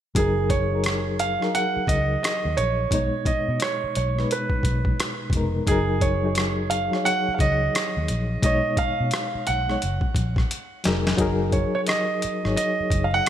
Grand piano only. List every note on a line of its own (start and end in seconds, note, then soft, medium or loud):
0.16 0.51 G#4 medium
0.50 1.21 C#5 medium
1.20 1.54 F5 medium
1.55 1.86 F#5 medium
1.88 2.22 D#5 medium
2.23 2.58 D#5 medium
2.57 3.28 C#5 medium
3.27 3.61 D#5 medium
3.62 3.95 C#5 medium
3.97 4.31 C#5 medium
4.32 5.30 B4 medium
5.68 6.03 G#4 medium
6.02 6.66 C#5 medium
6.70 7.05 F5 medium
7.05 7.32 F#5 loud
7.34 7.39 F5 medium
7.40 8.42 D#5 medium
8.44 8.79 D#5 medium
8.79 9.49 F5 medium
9.47 10.80 F#5 medium
11.53 11.73 C#5 medium
11.75 11.80 C#5 medium
11.88 12.55 D#5 medium
12.56 13.05 D#5 medium
13.04 13.13 F5 medium
13.14 13.29 F#5 loud